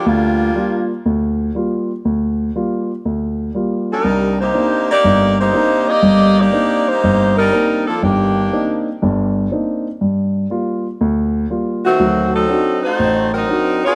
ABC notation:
X:1
M:4/4
L:1/8
Q:"Swing" 1/4=121
K:Gm
V:1 name="Saxophone section"
[G,B,DF]3 z4 z | z6 z [G,DEB]- | [G,DEB] [B,EGc]2 [B,EGd]2 [B,EGc]2 [B,Gde]- | [B,Gde] [B,EGd]2 [B,EGc]2 [G,DEB]2 [F,B,DA] |
[E,B,DG]3 z4 z | z6 z [E,A,C^F]- | [E,A,C^F] [^F,CEA]2 [A,EFc]2 [F,CEB]2 [CFAd] |]
V:2 name="Grand piano"
D,,2 [G,B,F] z D,,2 [G,B,F] z | D,,2 [G,B,F] z D,,2 [G,B,F] z | C,,2 [B,CDE] z G,,,2 [B,CDE] z | [G,,,G,,]2 [B,CDE] z G,,,2 [B,CDE] z |
G,,,2 [B,CDE] z [G,,,G,,]2 [B,CDE] z | G,,2 [G,B,F] z D,,2 [G,B,F] z | [D,,^F,]2 [CDE^F] z A,,,2 [CDEF] z |]